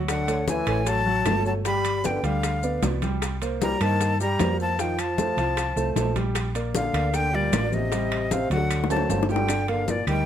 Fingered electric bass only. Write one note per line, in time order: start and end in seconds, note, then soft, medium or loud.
0.00 0.61 D2 medium
0.67 1.22 A1 medium
1.25 2.18 G1 medium
2.23 2.79 D2 medium
2.82 3.75 C2 medium
3.81 4.36 G2 medium
4.39 5.32 F2 medium
5.37 5.74 C2 medium
5.76 5.95 C2 medium
5.96 6.88 A#1 medium
6.93 7.49 D2 medium
7.52 8.44 A1 medium
8.50 9.05 D2 medium
9.09 10.01 G1 medium
10.07 10.26 D2 medium